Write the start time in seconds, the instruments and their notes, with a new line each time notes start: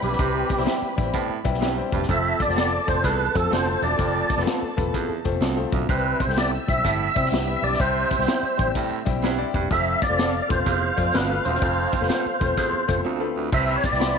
Already playing: grand piano G3 C4 E4 G4 C5, violin section B4 B5
0.02 fingered electric bass B1, baritone saxophone G2, tonewheel organ G4, closed hi-hat, high conga, low conga
0.12 snare
0.19 fingered electric bass C2, baritone saxophone C3, grand piano G3 C4 E4 G4 C5, kick, closed hi-hat
0.49 kick, closed hi-hat, high conga
0.58 fingered electric bass C2, grand piano G3 C4 E4 G4 C5, snare
0.66 clean electric guitar C4 E4 G4, snare, closed hi-hat
0.82 muted fingered electric bass stroke
0.96 fingered electric bass A1, grand piano G3 C4 E4 G4 B4, kick, closed hi-hat, low conga
1.03 grand piano C5, high conga
1.13 baritone saxophone A2, kick, closed hi-hat
1.29 muted fingered electric bass stroke, muted conga
1.44 fingered electric bass B1, grand piano G3 C4 E4 G4 B4 E5, kick, closed hi-hat
1.53 snare, high conga
1.61 baritone saxophone G2, clean electric guitar C4 E4 G4, grand piano G5, snare, closed hi-hat
1.77 grand piano G3 C4 E4 G4 C5, muted conga
1.92 fingered electric bass E1, baritone saxophone G2, grand piano C6, kick, closed hi-hat, high conga, low conga
2.02 snare
2.08 fingered electric bass F1, baritone saxophone F2, grand piano A3 C4 F4 A4 C5, violin section A4 A5, tonewheel organ E5, kick, closed hi-hat
2.25 muted conga
2.40 tonewheel organ D5, kick, closed hi-hat, high conga
2.48 fingered electric bass F1, grand piano A3 C4 F4 A4 C5, snare
2.56 clean electric guitar C4 F4 A4, snare, closed hi-hat, muted conga, high conga
2.87 fingered electric bass F1, grand piano A3 C4 F4 A4 D5, tonewheel organ C5, kick, closed hi-hat, low conga
2.96 high conga
3.04 fingered electric bass C2, baritone saxophone E2, tonewheel organ B4, kick, closed hi-hat, muted conga
3.34 fingered electric bass F2, grand piano A3 C4 F4 A4 C5, tonewheel organ A4, kick, closed hi-hat
3.43 high conga
3.50 fingered electric bass F1, baritone saxophone D2, clean electric guitar C4 F4 A4, tonewheel organ C5, snare, closed hi-hat
3.66 grand piano A3 C4 F4 A4 C5
3.82 fingered electric bass E1, baritone saxophone D2, tonewheel organ D5, closed hi-hat, high conga, low conga
3.98 fingered electric bass F1, baritone saxophone F2, grand piano A3 C4 F4 A4 C5, kick, closed hi-hat, muted conga
4.15 muted conga
4.30 kick, closed hi-hat, high conga
4.37 fingered electric bass F1, grand piano A3 C4 F4 A4 B4, snare
4.46 clean electric guitar C4 F4 A4, snare, closed hi-hat, high conga
4.62 muted fingered electric bass stroke
4.76 fingered electric bass E1, grand piano A3 C4 F4 A4 B4, kick, closed hi-hat, low conga
4.86 high conga
4.94 baritone saxophone E2, kick, closed hi-hat
5.09 muted fingered electric bass stroke
5.25 fingered electric bass F1, grand piano A3 C4 F4 A4 C5, kick, closed hi-hat
5.33 high conga
5.41 fingered electric bass C2, baritone saxophone D2, clean electric guitar C4 F4 A4, snare, closed hi-hat
5.56 grand piano A3 C4 F4 A4 C5, muted conga
5.72 fingered electric bass B1, baritone saxophone D2, kick, closed hi-hat, high conga, low conga
5.88 fingered electric bass C2, baritone saxophone C3, grand piano G3 C4 E4 G4 C5, tonewheel organ B4, violin section E5 E6, kick, closed hi-hat, tambourine
6.20 tonewheel organ C5, kick, closed hi-hat, high conga
6.27 fingered electric bass C2, grand piano G3 C4 E4 G4 A4, snare
6.37 clean electric guitar C4 E4 G4, tonewheel organ D5, snare, closed hi-hat, tambourine, muted conga, high conga
6.67 fingered electric bass B1, grand piano G3 C4 E4 G4 C5, tonewheel organ E5, kick, closed hi-hat, low conga
6.76 high conga
6.84 fingered electric bass G1, baritone saxophone A2, kick, closed hi-hat, tambourine, muted conga
7.00 muted conga
7.15 fingered electric bass C3, grand piano G3 C4 E4 G4 C5, kick, closed hi-hat
7.24 snare, high conga
7.31 fingered electric bass C2, baritone saxophone G2, clean electric guitar C4 E4 G4, snare, closed hi-hat, tambourine
7.47 grand piano G3 C4 E4 G4 B4
7.56 tonewheel organ E5
7.62 fingered electric bass B1, baritone saxophone G2, tonewheel organ D5, open hi-hat, high conga, low conga
7.73 snare
7.79 fingered electric bass C2, baritone saxophone C3, grand piano G3 C4 E4 G4 C5, tonewheel organ C5, kick, closed hi-hat, tambourine
8.10 kick, closed hi-hat, high conga
8.19 fingered electric bass C2, grand piano G3 C4 E4 G4 C5, snare
8.27 clean electric guitar C4 E4 G4, snare, closed hi-hat, tambourine, muted conga, high conga
8.43 muted fingered electric bass stroke
8.57 fingered electric bass A1, grand piano G3 C4 E4 G4 C5, kick, closed hi-hat, low conga
8.67 high conga
8.75 baritone saxophone A2, kick, closed hi-hat, tambourine
8.91 muted fingered electric bass stroke, muted conga
9.05 fingered electric bass B1, grand piano G3 C4 E4 G4 C5, kick, closed hi-hat
9.16 high conga
9.22 baritone saxophone G2, clean electric guitar C4 E4 G4, snare, closed hi-hat, tambourine, muted conga
9.38 grand piano G3 C4 E4 G4 D5
9.54 fingered electric bass E1, baritone saxophone G2, kick, closed hi-hat, high conga, low conga
9.70 fingered electric bass F1, baritone saxophone F2, grand piano A3 C4 F4 A4 C5, tonewheel organ E5, violin section F5 F6, kick, closed hi-hat, tambourine, muted conga
10.02 tonewheel organ D5, kick, closed hi-hat, high conga
10.09 fingered electric bass F1, grand piano A3 C4 F4 A4 C5
10.18 clean electric guitar C4 F4 A4, snare, closed hi-hat, tambourine, muted conga, high conga
10.35 muted conga
10.42 tonewheel organ D5
10.48 fingered electric bass E1, grand piano A3 C4 F4 A4 B4, tonewheel organ C5, kick, closed hi-hat, low conga
10.55 grand piano C5
10.59 high conga
10.66 fingered electric bass F1, baritone saxophone E2, kick, closed hi-hat, tambourine
10.83 muted conga
10.96 fingered electric bass F2, grand piano A3 C4 F4 A4 D5, kick, closed hi-hat
11.06 high conga
11.13 fingered electric bass G1, baritone saxophone D2, clean electric guitar C4 F4 A4, tonewheel organ B4, snare, closed hi-hat, tambourine
11.29 grand piano A3 C4 F4 A4 B4
11.45 fingered electric bass E1, baritone saxophone D2, tonewheel organ C5, closed hi-hat, high conga, low conga
11.54 snare
11.61 fingered electric bass F1, baritone saxophone F2, grand piano A3 C4 F4 A4 C5, kick, closed hi-hat, tambourine
11.92 kick, closed hi-hat, high conga
12.01 fingered electric bass F1, grand piano A3 C4 F4 A4 B4, snare
12.09 clean electric guitar C4 F4 A4, snare, closed hi-hat, tambourine, high conga
12.26 muted fingered electric bass stroke
12.40 fingered electric bass E1, grand piano A3 C4 F4 A4 B4, kick, closed hi-hat, low conga
12.46 grand piano C5, high conga
12.57 baritone saxophone E2, kick, closed hi-hat, tambourine, muted conga
12.73 muted fingered electric bass stroke, muted conga
12.88 fingered electric bass F1, grand piano A3 C4 F4 A4 C5, kick, closed hi-hat
12.96 high conga
13.05 baritone saxophone D2, clean electric guitar C4 F4 A4
13.20 grand piano A3 C4 F4 A4 B4
13.36 baritone saxophone D2
13.52 fingered electric bass C2, baritone saxophone C3, grand piano G3 C4 E4 G4 C5, violin section B4 B5, tonewheel organ E5, kick, crash, tambourine
13.68 muted conga
13.76 tonewheel organ C#5
13.83 tonewheel organ D5, kick, closed hi-hat, high conga
13.92 fingered electric bass C2, grand piano G3 C4 E4 G4 D5, snare
14.00 clean electric guitar E4 G4 C5, snare, closed hi-hat, tambourine, muted conga, high conga